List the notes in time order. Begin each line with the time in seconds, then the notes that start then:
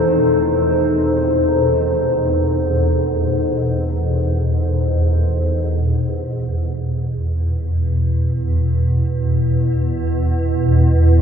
Already playing: E2 B2 E3 D#4 A4 C5
5.59 E2 B2